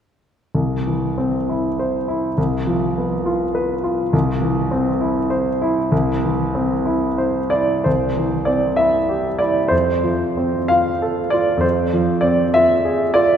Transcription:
0.55 C2
0.87 E3
1.18 C4
1.49 E4
1.79 C5
2.08 E4
2.38 C2
2.67 F3
2.98 B3
3.26 F4
3.55 B4
3.84 F4
4.13 C2
4.42 E3
4.71 C4
5.01 E4
5.30 C5
5.62 E4
5.92 C2
6.24 E3
6.55 C4
6.86 E4
7.18 C5
7.50 E4 D5
7.84 C2 C5
8.16 E3
8.45 C4 D5
8.76 E4 E5
9.09 G4
9.38 E4 D5
9.68 F2 C5
10.04 F3
10.37 C4
10.68 F4 F5
11.02 A4
11.30 F4 D5
11.57 F2 C5
11.93 F3
12.21 C4 D5
12.54 F4 E5
12.85 G#4
13.14 F4 D5

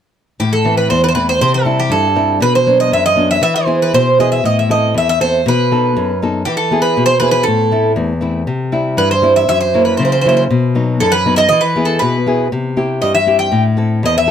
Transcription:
0.40 A2 G4
0.53 A4
0.65 E3 A3 C4
0.77 B4
0.90 E2 C5
1.04 B4
1.09 C5
1.15 E3 A3 C4 B4
1.29 C5
1.41 C3 C5
1.54 A4
1.65 G3 C4 E4
1.79 G4
1.90 G2 A4
2.16 G3 C4 E4
2.40 B2 B4
2.55 C5
2.67 F#3 B3 D4
2.80 D#5
2.92 F#2 E5
3.06 D#5
3.16 F#3 B3 D4
3.31 E5
3.42 E3 E5
3.56 C5
3.66 B3 E4 G#4
3.82 B4
3.94 B2 C5
4.19 B3 E4 G#4 D#5
4.32 E5
4.44 A2 D#5
4.59 E5
4.69 C4 E4 A4 D#5
4.94 E2 E5
5.09 E5
5.20 C4 E4 A4 C5
5.46 B2 B4
5.71 B3 D#4 A4
5.96 F#2
6.22 B3 D#4 A4
6.45 E3 G4
6.57 A4
6.71 B3 E4 G#4
6.82 B4
6.97 B2
7.06 C5
7.20 B3 E4 G#4 B4
7.31 B4
7.43 A4
7.48 A2
7.72 A3 C4 E4
7.96 E2
8.21 A3 C4 E4
8.47 C3
8.72 G3 C4 E4
8.97 G2 B4
9.11 C5
9.22 G3 C4 E4
9.36 E5
9.48 F#2 E5
9.61 C5
9.74 F#3 A#3 E4
9.85 B4
9.97 C#3 C5
10.05 C5
10.12 C5
10.21 F#3 C5
10.26 A#3 E4 C5
10.37 C5
10.50 B2
10.75 F#3 B3 D#4
11.00 F#2 A4
11.12 B4
11.26 F#3 B3 D#4
11.36 D#5 E5
11.49 E3 D#5
11.61 B4
11.76 B3 E4 G#4
11.85 A4
11.99 B2 B4
12.26 B3 E4 G#4
12.52 C3
12.77 C4 E4 G4
13.02 G2 D#5
13.15 E5
13.26 C4 E4 G4
13.39 G5
13.52 A2
13.77 C4 E4 A4
14.03 E2 D#5
14.18 E5
14.26 C4 E4 A4

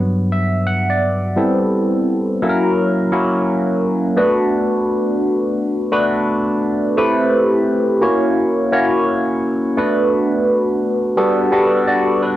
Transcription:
Already playing: G2 F#3 B3
0.32 E5
0.67 F#5
0.90 D5
1.36 G3 B3 C4 E4 A4
2.42 F#3 A#3 C#4 E4 A4
2.49 A#4
3.12 F#3 A#3 C#4 E4 F#4
4.16 A3 B3 D4 F#4 B4
5.92 A3 B3 D4 F#4 B4
6.97 A3 C4 E4 G4 B4
8.01 A#3 C#4 E4 F#4 C#5
8.72 A#3 C#4 E4 F#4 C#5
9.77 A3 B3 D4 F#4 B4
11.17 G3 B3 D4 F#4 A4
11.52 G3 B3 D4 F#4 A4
11.87 F#4 D5
12.23 D4 B4

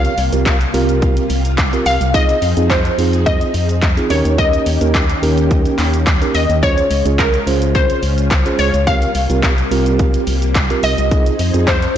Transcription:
Already playing: C3 G3 A#3 C4 F4 G4 A#4 F5
0.05 closed hi-hat, shaker
0.18 C2, open hi-hat, shaker
0.33 C2 C4 F4 G4 A#4, closed hi-hat, shaker
0.46 kick, clap, closed hi-hat, shaker
0.61 closed hi-hat, shaker
0.74 C2 C4 F4 G4 A#4, open hi-hat, shaker
0.89 closed hi-hat, shaker
1.02 kick, closed hi-hat, shaker
1.17 closed hi-hat, shaker
1.30 C2, open hi-hat, shaker
1.45 closed hi-hat, shaker
1.58 kick, clap, closed hi-hat, shaker
1.73 C4 F4 G4 A#4, closed hi-hat, shaker
1.86 C2 F5, open hi-hat, shaker
2.01 C2, closed hi-hat, shaker
2.14 F3 C4 D#4 F4 G#4 D#5, kick, closed hi-hat, shaker
2.29 closed hi-hat, shaker
2.42 F2, open hi-hat, shaker
2.57 F2 C4 D#4 F4 G#4, closed hi-hat, shaker
2.70 C5, kick, clap, closed hi-hat, shaker
2.85 closed hi-hat, shaker
2.98 F2 C4 D#4 F4 G#4, open hi-hat, shaker
3.13 closed hi-hat, shaker
3.26 D#5, kick, closed hi-hat, shaker
3.41 closed hi-hat, shaker
3.54 F2, open hi-hat, shaker
3.69 closed hi-hat, shaker
3.82 kick, clap, closed hi-hat, shaker
3.97 C4 D#4 F4 G#4, closed hi-hat, shaker
4.10 D#2 D#3 A#3 C#4 D#4 G4 A#4 C#5, open hi-hat, shaker
4.25 D#2, closed hi-hat, shaker
4.38 D#5, kick, closed hi-hat, shaker
4.53 closed hi-hat, shaker
4.66 D#2, open hi-hat, shaker
4.81 D#2 C#4 D#4 G4 A#4, closed hi-hat, shaker
4.95 kick, clap, closed hi-hat, shaker
5.09 closed hi-hat, shaker
5.22 D#2 C#4 D#4 G4 A#4, open hi-hat, shaker
5.38 closed hi-hat, shaker
5.51 kick, closed hi-hat, shaker
5.65 closed hi-hat, shaker
5.78 D#2, clap, open hi-hat, shaker
5.94 closed hi-hat, shaker
6.07 kick, clap, closed hi-hat, shaker
6.21 C#4 D#4 G4 A#4, closed hi-hat, shaker
6.35 D#2 D#5, open hi-hat, shaker
6.50 D#2, closed hi-hat, shaker
6.63 C#3 G#3 C#4 F4 G#4 C5 C#5, kick, closed hi-hat, shaker
6.78 closed hi-hat, shaker
6.91 C#2, open hi-hat, shaker
7.05 C#2 C#4 F4 G#4 C#5, closed hi-hat, shaker
7.19 A#4, kick, clap, closed hi-hat, shaker
7.34 closed hi-hat, shaker
7.47 C#2 C#4 F4 G#4 C5, open hi-hat, shaker
7.62 closed hi-hat, shaker
7.75 C5, kick, closed hi-hat, shaker
7.90 closed hi-hat, shaker
8.03 C#2, open hi-hat, shaker
8.18 closed hi-hat, shaker
8.31 kick, clap, closed hi-hat, shaker
8.46 C#4 F4 G#4 C5, closed hi-hat, shaker
8.59 C#2 C#5, open hi-hat, shaker
8.74 C#2, closed hi-hat, shaker
8.87 C3 G3 A#3 C4 F4 G4 A#4 F5, kick, closed hi-hat, shaker
9.02 closed hi-hat, shaker
9.15 C2, open hi-hat, shaker
9.30 C2 C4 F4 G4 A#4, closed hi-hat, shaker
9.43 kick, clap, closed hi-hat, shaker
9.58 closed hi-hat, shaker
9.71 C2 C4 F4 G4 A#4, open hi-hat, shaker
9.86 closed hi-hat, shaker
9.99 kick, closed hi-hat, shaker
10.14 closed hi-hat, shaker
10.27 C2, open hi-hat, shaker
10.42 closed hi-hat, shaker
10.55 kick, clap, closed hi-hat, shaker
10.70 C4 F4 G4 A#4, closed hi-hat, shaker
10.83 C2 D#5, open hi-hat, shaker
10.98 C2, closed hi-hat, shaker
11.11 F3 C4 D#4 F4 G#4, kick, closed hi-hat, shaker
11.26 closed hi-hat, shaker
11.39 F2, open hi-hat, shaker
11.54 F2 C4 D#4 F4 G#4, closed hi-hat, shaker
11.67 C5, kick, clap, closed hi-hat, shaker
11.82 closed hi-hat, shaker

